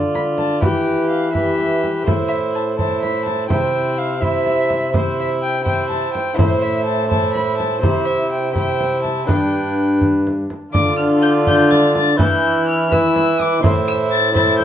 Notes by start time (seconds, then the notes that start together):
Already playing: D3 F4 D5
0.15 B5, frame drum
0.38 A5, frame drum
0.61 E3 E4 G4 B4 G5, frame drum
1.10 F5
1.33 E4 G4 B4 E5, frame drum
1.59 frame drum
1.84 frame drum
2.03 A2 A3 E4 C5
2.08 frame drum
2.28 E5
2.55 A5
2.78 E4 C5 A5, frame drum
3.03 B5, frame drum
3.25 A5, frame drum
3.49 C3 E4 C5 G5, frame drum
3.98 F5
4.20 E4 C5 E5, frame drum
4.46 frame drum
4.70 frame drum
4.92 E4 C5, frame drum
5.20 E5
5.42 G5
5.65 E4 C5 G5, frame drum
5.90 A5, frame drum
6.14 G5, frame drum
6.33 A2 A3 E4 C5
6.38 C5, frame drum
6.62 E5
6.85 A5
7.08 E4 C5 A5, frame drum
7.34 B5, frame drum
7.58 A5, frame drum
7.80 C3 E4 C5, frame drum
8.05 E5
8.32 G5
8.53 E4 C5 G5, frame drum
8.80 frame drum
9.03 A5, frame drum
9.26 G2 D4 B4 G5, frame drum
10.01 frame drum
10.27 frame drum
10.50 frame drum
10.73 D3 F4 D5 D6, frame drum
10.97 F6
11.22 G6
11.47 A3 F4 D5 G6, frame drum
11.71 A6, frame drum
11.95 A6, frame drum
12.17 E3 E4 B4 G6, frame drum
12.68 F6
12.90 E4 B4 E6, frame drum
13.16 frame drum
13.40 D6, frame drum
13.61 A2 E4 C5 C6, frame drum
13.88 E6
14.11 A6
14.33 A3 E4 C5 A6, frame drum
14.58 G6, frame drum